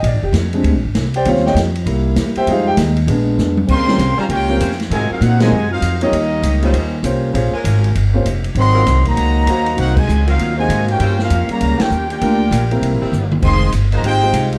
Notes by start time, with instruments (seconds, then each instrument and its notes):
0.03 upright bass A#1, grand piano D5, ride
0.13 upright bass G#1
0.23 upright bass F1, grand piano G4
0.33 upright bass F2, snare, hi-hat pedal, ride
0.53 grand piano G3 G#3 C4 D4, ride
0.63 upright bass D2, ride
0.74 upright bass A#1
0.85 upright bass G#1
0.95 upright bass C2, snare, hi-hat pedal, ride
1.14 grand piano G4 C5 D5 G5, ride
1.25 upright bass D#2, grand piano G3 C4 C#4 F4 C5 C#5 F5, ride
1.36 snare
1.46 grand piano G4 C#5 D#5 G5, snare
1.55 upright bass F2, snare, hi-hat pedal, ride
1.75 ride
1.86 upright bass C2, grand piano G3 A#3 E4, ride
2.16 upright bass E2, snare, hi-hat pedal, ride
2.35 grand piano G4 C5 E5 G5, muted upright bass stroke, ride
2.46 upright bass F2, grand piano G3 G#3 D#4, ride
2.51 grand piano F4 G#4 C5 F5
2.67 grand piano G4 G5
2.77 upright bass D#2, snare, hi-hat pedal, ride
2.96 ride
3.07 upright bass A#1, grand piano G#3 B3 D4, ride
3.38 upright bass F2, snare, hi-hat pedal
3.57 high tom
3.67 upright bass D#2, trombone section C#3 G3 C4, trumpet section A#4 F5 G5, kick, crash
3.72 trumpet section C6
3.87 grand piano G3 C4 C#4 F4 A#4, snare
3.98 upright bass C2, hi-hat pedal, ride
4.17 trombone section C#3 G3 A#3, saxophone section G3 C#4 F4 C5, trumpet section G4 C#5 F5 A#5, muted upright bass stroke
4.28 upright bass C#2, trombone section A#3 C#4 G4, trumpet section F4 A#4 C#5 G5, ride
4.49 grand piano G3 C4 C#4 F4 A#4
4.60 upright bass F2, saxophone section G3 C#4 F4 C5, hi-hat pedal, ride
4.71 snare
4.80 snare, ride
4.90 upright bass G#2, trombone section C3 D#3 G#3, saxophone section F#3 C4 F4 A#4, trumpet section F#4 C5 D#5 G#5, ride
5.10 trombone section F#3 C4 F4, trumpet section D#4 A#4 C5 F5, muted upright bass stroke
5.21 upright bass A#2, trombone section C4 D#4 F#4, trumpet section D#4 A#4 C5 F#5, hi-hat pedal, ride
5.40 trombone section C3 D#3 G#3, grand piano F#3 C4 D#4 F4 A#4, trumpet section F#4 C5 D#5 G#5, snare, ride
5.51 upright bass F#2
5.71 trombone section F#3 C4 F4, trumpet section D#4 A#4 C5 F5
5.81 upright bass F2, hi-hat pedal, ride
6.01 trombone section G3 A#3 D#4, grand piano A#3 C#4 F4 G4 C#5, trumpet section C#4 G4 A#4 D#5, ride
6.12 upright bass D#2, ride
6.42 upright bass C#2, hi-hat pedal, ride
6.62 saxophone section G3 C#4 F4 C5, grand piano A#3 C#4 F4 G4 C5, ride
6.73 upright bass D#2, ride
7.03 upright bass C2, grand piano A#3 C#4 F4 G4 C5, hi-hat pedal, ride
7.33 upright bass A#1, grand piano A#3 C#4 F4 G#4 C5, ride
7.53 saxophone section G#3 C#4 F4 A#4, muted upright bass stroke
7.64 upright bass G#1, hi-hat pedal, ride
7.84 ride
7.95 upright bass G1, ride
8.14 grand piano A#3 C#4 F4 G4 C5
8.25 upright bass F1, hi-hat pedal, ride
8.44 ride
8.55 upright bass G#1, trombone section D#3 F#3 C4, ride
8.59 trumpet section A#4 D#5 F#5 C6
8.75 saxophone section F#3 C4 F4 A#4
8.86 upright bass C2, snare, hi-hat pedal, ride
9.05 trombone section D#3 F#3 A#3, trumpet section F#4 C5 D#5 A#5, kick, ride
9.16 upright bass C#2, ride
9.46 upright bass D#2, grand piano A#3 D#4 F#4 C5 F5, hi-hat pedal, ride
9.66 ride
9.77 upright bass C2, trombone section C4 D#4 F#4, trumpet section D#4 A#4 C5 F#5, ride
9.96 trombone section C3 D#3 G#3, trumpet section F#4 C5 D#5 G#5, kick, crash
10.08 upright bass C#2, hi-hat pedal
10.26 saxophone section F#3 C4 F4 A#4, trombone section F#3 C4 F4, trumpet section D#4 A#4 C5 F5, ride
10.38 upright bass D#2, ride
10.57 trombone section C3 D#3 G#3, grand piano A#3 D#4 F#4 C5 F5, trumpet section F#4 C5 D#5 G#5
10.69 upright bass G#2, hi-hat pedal, ride
10.88 trombone section A#3 C#4 G4, trumpet section F4 A#4 G5, ride
10.92 trumpet section C#5
11.00 upright bass G2, saxophone section G3 C#4 F4 C5, ride
11.19 trombone section A#3 C#4 F4, trumpet section C#4, snare
11.23 trumpet section G4 A#4 F5
11.30 upright bass F2, hi-hat pedal, ride
11.49 trombone section C#3 G3 A#3, trumpet section G4 C#5 A#5, muted upright bass stroke, ride
11.53 trumpet section F5
11.61 upright bass C#2, ride
11.80 trombone section A#3 C#4 G4, trumpet section F4 A#4 C#5 G5, muted upright bass stroke, snare, ride
11.90 upright bass D#2, hi-hat pedal
12.10 trombone section A#3 D4 G4, trumpet section F4 A#4 D5 G5, ride
12.21 upright bass D2, saxophone section G3 D4 F4 A#4, grand piano A#3 D4 F4 G4 A#4, ride
12.51 upright bass A#1, saxophone section G3 D4 F4 A#4, hi-hat pedal, ride
12.71 grand piano A#3 C4 E4 G4 A#4, ride
12.81 upright bass C2, ride
12.92 upright bass A#1
13.01 upright bass G1, saxophone section G3 C4 E4 G4
13.12 upright bass G1, hi-hat pedal, mid tom
13.31 mid tom
13.42 upright bass F1, trombone section D#3 G#3 C4, trumpet section G#4 D#5 F5 C6, kick, crash
13.72 upright bass G1, hi-hat pedal, ride
13.92 saxophone section G#3 D#4 F4 C5, trombone section A#3, trumpet section G4 C5 D#5 A#5, ride
14.03 upright bass G#1, trombone section C4 D#4 G4, trumpet section F4 C5 D#5 G5, ride
14.22 grand piano G#3 D#4 F4 G4 C5
14.33 upright bass C2, hi-hat pedal, ride
14.52 ride